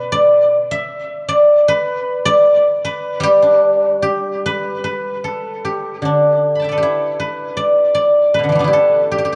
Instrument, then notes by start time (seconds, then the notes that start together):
guzheng
Already playing: B2 B4 D5
0.12 D5
0.71 E5
1.28 D5
1.68 B4
2.25 D5
2.85 B4
3.20 G3 G4
3.42 D4
4.02 G4
4.46 B4
4.84 B4
5.24 A4
5.65 G4
6.02 D3 D4
6.55 B5
6.60 G5 A5
6.64 E5
6.69 A4 B4 D5
6.78 G4
6.83 E4
7.20 B4
7.57 D5
7.95 D5
8.34 B4
8.39 B2
8.44 D3
8.49 E3 G3
8.55 A3 B3
8.60 D4 E4
8.67 G4
8.73 A4
9.11 G4
9.18 G4
9.25 G4